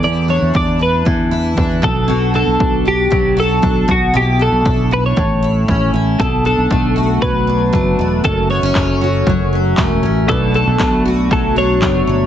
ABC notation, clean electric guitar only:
X:1
M:4/4
L:1/16
Q:1/4=117
K:Bm
V:1 name="Clean electric guitar"
d2 c2 d2 B2 z6 A2- | A2 A4 G4 A4 F2 | G2 A4 B c6- c z2 | A2 A6 B8 |
A2 c8 z6 | A2 A4 z2 A2 c6 |]